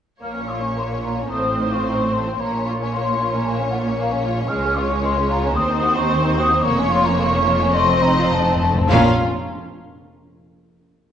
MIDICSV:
0, 0, Header, 1, 8, 480
1, 0, Start_track
1, 0, Key_signature, -5, "minor"
1, 0, Tempo, 544465
1, 196, Time_signature, 4, 2, 24, 8
1, 2113, Tempo, 529568
1, 5953, Tempo, 566572
1, 9754, End_track
2, 0, Start_track
2, 0, Title_t, "Flute section"
2, 0, Program_c, 0, 73
2, 203, Note_on_c, 0, 89, 58
2, 426, Note_off_c, 0, 89, 0
2, 443, Note_on_c, 0, 85, 53
2, 681, Note_on_c, 0, 84, 53
2, 683, Note_off_c, 0, 85, 0
2, 736, Note_off_c, 0, 84, 0
2, 911, Note_on_c, 0, 82, 48
2, 1153, Note_off_c, 0, 82, 0
2, 1162, Note_on_c, 0, 87, 62
2, 1513, Note_off_c, 0, 87, 0
2, 1524, Note_on_c, 0, 85, 53
2, 1877, Note_off_c, 0, 85, 0
2, 1884, Note_on_c, 0, 84, 58
2, 2115, Note_on_c, 0, 82, 68
2, 2117, Note_off_c, 0, 84, 0
2, 2355, Note_off_c, 0, 82, 0
2, 2355, Note_on_c, 0, 85, 64
2, 2590, Note_on_c, 0, 84, 62
2, 2593, Note_off_c, 0, 85, 0
2, 2940, Note_off_c, 0, 84, 0
2, 2955, Note_on_c, 0, 82, 64
2, 3068, Note_off_c, 0, 82, 0
2, 3073, Note_on_c, 0, 80, 72
2, 3305, Note_on_c, 0, 78, 62
2, 3308, Note_off_c, 0, 80, 0
2, 3360, Note_off_c, 0, 78, 0
2, 3552, Note_on_c, 0, 77, 71
2, 4012, Note_off_c, 0, 77, 0
2, 4012, Note_on_c, 0, 89, 86
2, 4253, Note_off_c, 0, 89, 0
2, 4254, Note_on_c, 0, 85, 79
2, 4494, Note_off_c, 0, 85, 0
2, 4507, Note_on_c, 0, 84, 77
2, 4737, Note_off_c, 0, 84, 0
2, 4748, Note_on_c, 0, 82, 82
2, 4978, Note_on_c, 0, 87, 98
2, 4979, Note_off_c, 0, 82, 0
2, 5341, Note_on_c, 0, 85, 83
2, 5342, Note_off_c, 0, 87, 0
2, 5698, Note_off_c, 0, 85, 0
2, 5712, Note_on_c, 0, 87, 91
2, 5948, Note_on_c, 0, 85, 103
2, 5950, Note_off_c, 0, 87, 0
2, 6184, Note_off_c, 0, 85, 0
2, 6192, Note_on_c, 0, 84, 96
2, 6306, Note_off_c, 0, 84, 0
2, 6308, Note_on_c, 0, 82, 87
2, 6417, Note_on_c, 0, 85, 100
2, 6423, Note_off_c, 0, 82, 0
2, 6893, Note_off_c, 0, 85, 0
2, 6896, Note_on_c, 0, 84, 106
2, 7133, Note_on_c, 0, 82, 92
2, 7134, Note_off_c, 0, 84, 0
2, 7376, Note_off_c, 0, 82, 0
2, 7388, Note_on_c, 0, 81, 79
2, 7879, Note_off_c, 0, 81, 0
2, 7881, Note_on_c, 0, 82, 97
2, 8146, Note_off_c, 0, 82, 0
2, 9754, End_track
3, 0, Start_track
3, 0, Title_t, "Violin section"
3, 0, Program_c, 1, 48
3, 189, Note_on_c, 1, 73, 36
3, 1127, Note_off_c, 1, 73, 0
3, 1165, Note_on_c, 1, 72, 37
3, 2112, Note_off_c, 1, 72, 0
3, 2116, Note_on_c, 1, 73, 47
3, 4943, Note_off_c, 1, 73, 0
3, 4982, Note_on_c, 1, 72, 63
3, 5955, Note_off_c, 1, 72, 0
3, 5955, Note_on_c, 1, 73, 69
3, 6877, Note_off_c, 1, 73, 0
3, 6892, Note_on_c, 1, 75, 67
3, 7691, Note_off_c, 1, 75, 0
3, 7878, Note_on_c, 1, 77, 74
3, 8145, Note_off_c, 1, 77, 0
3, 9754, End_track
4, 0, Start_track
4, 0, Title_t, "Violin section"
4, 0, Program_c, 2, 48
4, 196, Note_on_c, 2, 58, 39
4, 309, Note_off_c, 2, 58, 0
4, 317, Note_on_c, 2, 61, 36
4, 432, Note_on_c, 2, 65, 37
4, 439, Note_off_c, 2, 61, 0
4, 548, Note_on_c, 2, 61, 37
4, 557, Note_off_c, 2, 65, 0
4, 675, Note_off_c, 2, 61, 0
4, 679, Note_on_c, 2, 58, 35
4, 801, Note_off_c, 2, 58, 0
4, 809, Note_on_c, 2, 61, 35
4, 920, Note_on_c, 2, 65, 35
4, 927, Note_off_c, 2, 61, 0
4, 1043, Note_off_c, 2, 65, 0
4, 1043, Note_on_c, 2, 61, 35
4, 1164, Note_off_c, 2, 61, 0
4, 1165, Note_on_c, 2, 57, 40
4, 1276, Note_off_c, 2, 57, 0
4, 1290, Note_on_c, 2, 60, 38
4, 1404, Note_on_c, 2, 63, 37
4, 1406, Note_off_c, 2, 60, 0
4, 1522, Note_off_c, 2, 63, 0
4, 1524, Note_on_c, 2, 65, 34
4, 1641, Note_off_c, 2, 65, 0
4, 1649, Note_on_c, 2, 63, 38
4, 1762, Note_off_c, 2, 63, 0
4, 1762, Note_on_c, 2, 60, 37
4, 1876, Note_on_c, 2, 57, 41
4, 1878, Note_off_c, 2, 60, 0
4, 1994, Note_off_c, 2, 57, 0
4, 2000, Note_on_c, 2, 60, 37
4, 2115, Note_off_c, 2, 60, 0
4, 2120, Note_on_c, 2, 58, 42
4, 2229, Note_off_c, 2, 58, 0
4, 2243, Note_on_c, 2, 61, 40
4, 2358, Note_off_c, 2, 61, 0
4, 2374, Note_on_c, 2, 65, 44
4, 2484, Note_off_c, 2, 65, 0
4, 2489, Note_on_c, 2, 61, 41
4, 2600, Note_off_c, 2, 61, 0
4, 2606, Note_on_c, 2, 58, 40
4, 2718, Note_off_c, 2, 58, 0
4, 2727, Note_on_c, 2, 61, 38
4, 2837, Note_off_c, 2, 61, 0
4, 2856, Note_on_c, 2, 65, 41
4, 2961, Note_off_c, 2, 65, 0
4, 2963, Note_on_c, 2, 61, 45
4, 3074, Note_off_c, 2, 61, 0
4, 3082, Note_on_c, 2, 58, 45
4, 3186, Note_off_c, 2, 58, 0
4, 3200, Note_on_c, 2, 61, 43
4, 3312, Note_off_c, 2, 61, 0
4, 3312, Note_on_c, 2, 65, 43
4, 3427, Note_off_c, 2, 65, 0
4, 3438, Note_on_c, 2, 61, 43
4, 3550, Note_off_c, 2, 61, 0
4, 3553, Note_on_c, 2, 58, 48
4, 3667, Note_off_c, 2, 58, 0
4, 3670, Note_on_c, 2, 61, 47
4, 3784, Note_off_c, 2, 61, 0
4, 3787, Note_on_c, 2, 65, 48
4, 3902, Note_off_c, 2, 65, 0
4, 3903, Note_on_c, 2, 61, 49
4, 4019, Note_off_c, 2, 61, 0
4, 4024, Note_on_c, 2, 56, 52
4, 4131, Note_off_c, 2, 56, 0
4, 4140, Note_on_c, 2, 61, 52
4, 4258, Note_off_c, 2, 61, 0
4, 4259, Note_on_c, 2, 65, 53
4, 4377, Note_off_c, 2, 65, 0
4, 4386, Note_on_c, 2, 61, 55
4, 4500, Note_off_c, 2, 61, 0
4, 4504, Note_on_c, 2, 56, 54
4, 4620, Note_off_c, 2, 56, 0
4, 4627, Note_on_c, 2, 61, 53
4, 4742, Note_off_c, 2, 61, 0
4, 4748, Note_on_c, 2, 65, 55
4, 4863, Note_off_c, 2, 65, 0
4, 4865, Note_on_c, 2, 61, 58
4, 4981, Note_off_c, 2, 61, 0
4, 4985, Note_on_c, 2, 60, 64
4, 5094, Note_off_c, 2, 60, 0
4, 5102, Note_on_c, 2, 63, 60
4, 5222, Note_off_c, 2, 63, 0
4, 5231, Note_on_c, 2, 66, 59
4, 5347, Note_off_c, 2, 66, 0
4, 5353, Note_on_c, 2, 63, 56
4, 5468, Note_off_c, 2, 63, 0
4, 5477, Note_on_c, 2, 60, 61
4, 5591, Note_off_c, 2, 60, 0
4, 5597, Note_on_c, 2, 63, 59
4, 5713, Note_off_c, 2, 63, 0
4, 5725, Note_on_c, 2, 66, 62
4, 5838, Note_off_c, 2, 66, 0
4, 5844, Note_on_c, 2, 63, 61
4, 5960, Note_off_c, 2, 63, 0
4, 5960, Note_on_c, 2, 58, 65
4, 6065, Note_off_c, 2, 58, 0
4, 6074, Note_on_c, 2, 61, 63
4, 6185, Note_on_c, 2, 65, 67
4, 6188, Note_off_c, 2, 61, 0
4, 6303, Note_off_c, 2, 65, 0
4, 6312, Note_on_c, 2, 61, 62
4, 6424, Note_on_c, 2, 58, 64
4, 6425, Note_off_c, 2, 61, 0
4, 6541, Note_off_c, 2, 58, 0
4, 6547, Note_on_c, 2, 61, 60
4, 6661, Note_off_c, 2, 61, 0
4, 6662, Note_on_c, 2, 65, 61
4, 6778, Note_off_c, 2, 65, 0
4, 6786, Note_on_c, 2, 61, 64
4, 6900, Note_off_c, 2, 61, 0
4, 6910, Note_on_c, 2, 57, 70
4, 7014, Note_off_c, 2, 57, 0
4, 7035, Note_on_c, 2, 60, 64
4, 7144, Note_off_c, 2, 60, 0
4, 7155, Note_on_c, 2, 63, 67
4, 7265, Note_off_c, 2, 63, 0
4, 7278, Note_on_c, 2, 65, 59
4, 7388, Note_off_c, 2, 65, 0
4, 7400, Note_on_c, 2, 63, 62
4, 7512, Note_off_c, 2, 63, 0
4, 7525, Note_on_c, 2, 60, 58
4, 7638, Note_off_c, 2, 60, 0
4, 7648, Note_on_c, 2, 57, 60
4, 7762, Note_off_c, 2, 57, 0
4, 7770, Note_on_c, 2, 60, 59
4, 7883, Note_off_c, 2, 60, 0
4, 7888, Note_on_c, 2, 65, 72
4, 8150, Note_off_c, 2, 65, 0
4, 9754, End_track
5, 0, Start_track
5, 0, Title_t, "Viola section"
5, 0, Program_c, 3, 48
5, 190, Note_on_c, 3, 58, 39
5, 1127, Note_off_c, 3, 58, 0
5, 1166, Note_on_c, 3, 60, 40
5, 2105, Note_on_c, 3, 58, 45
5, 2112, Note_off_c, 3, 60, 0
5, 3976, Note_off_c, 3, 58, 0
5, 4023, Note_on_c, 3, 56, 55
5, 4961, Note_off_c, 3, 56, 0
5, 4979, Note_on_c, 3, 60, 59
5, 5953, Note_off_c, 3, 60, 0
5, 5955, Note_on_c, 3, 58, 64
5, 6892, Note_on_c, 3, 60, 66
5, 6896, Note_off_c, 3, 58, 0
5, 7691, Note_off_c, 3, 60, 0
5, 7878, Note_on_c, 3, 61, 75
5, 8145, Note_off_c, 3, 61, 0
5, 9754, End_track
6, 0, Start_track
6, 0, Title_t, "Cello section"
6, 0, Program_c, 4, 48
6, 193, Note_on_c, 4, 46, 38
6, 1128, Note_off_c, 4, 46, 0
6, 1170, Note_on_c, 4, 45, 44
6, 2115, Note_off_c, 4, 45, 0
6, 2116, Note_on_c, 4, 46, 46
6, 3982, Note_off_c, 4, 46, 0
6, 4020, Note_on_c, 4, 37, 57
6, 4960, Note_off_c, 4, 37, 0
6, 4977, Note_on_c, 4, 39, 68
6, 5952, Note_off_c, 4, 39, 0
6, 5955, Note_on_c, 4, 41, 74
6, 7659, Note_off_c, 4, 41, 0
6, 7879, Note_on_c, 4, 46, 83
6, 8145, Note_off_c, 4, 46, 0
6, 9754, End_track
7, 0, Start_track
7, 0, Title_t, "Timpani"
7, 0, Program_c, 5, 47
7, 6902, Note_on_c, 5, 41, 33
7, 6960, Note_off_c, 5, 41, 0
7, 6971, Note_on_c, 5, 41, 31
7, 7028, Note_off_c, 5, 41, 0
7, 7040, Note_on_c, 5, 41, 39
7, 7090, Note_off_c, 5, 41, 0
7, 7100, Note_on_c, 5, 41, 43
7, 7159, Note_off_c, 5, 41, 0
7, 7170, Note_on_c, 5, 41, 45
7, 7228, Note_off_c, 5, 41, 0
7, 7244, Note_on_c, 5, 41, 48
7, 7299, Note_off_c, 5, 41, 0
7, 7308, Note_on_c, 5, 41, 47
7, 7365, Note_off_c, 5, 41, 0
7, 7378, Note_on_c, 5, 41, 54
7, 7428, Note_off_c, 5, 41, 0
7, 7438, Note_on_c, 5, 41, 55
7, 7499, Note_off_c, 5, 41, 0
7, 7512, Note_on_c, 5, 41, 59
7, 7571, Note_off_c, 5, 41, 0
7, 7583, Note_on_c, 5, 41, 69
7, 7639, Note_off_c, 5, 41, 0
7, 7649, Note_on_c, 5, 41, 76
7, 7710, Note_off_c, 5, 41, 0
7, 7724, Note_on_c, 5, 41, 90
7, 7781, Note_off_c, 5, 41, 0
7, 7794, Note_on_c, 5, 41, 94
7, 7850, Note_off_c, 5, 41, 0
7, 7884, Note_on_c, 5, 46, 90
7, 8103, Note_off_c, 5, 46, 0
7, 9754, End_track
8, 0, Start_track
8, 0, Title_t, "Double bass section"
8, 0, Program_c, 6, 48
8, 195, Note_on_c, 6, 34, 38
8, 1129, Note_off_c, 6, 34, 0
8, 1170, Note_on_c, 6, 33, 42
8, 2113, Note_on_c, 6, 34, 49
8, 2114, Note_off_c, 6, 33, 0
8, 3980, Note_off_c, 6, 34, 0
8, 4023, Note_on_c, 6, 37, 61
8, 4961, Note_off_c, 6, 37, 0
8, 4978, Note_on_c, 6, 39, 72
8, 5953, Note_off_c, 6, 39, 0
8, 5957, Note_on_c, 6, 29, 77
8, 7660, Note_off_c, 6, 29, 0
8, 7879, Note_on_c, 6, 34, 89
8, 8145, Note_off_c, 6, 34, 0
8, 9754, End_track
0, 0, End_of_file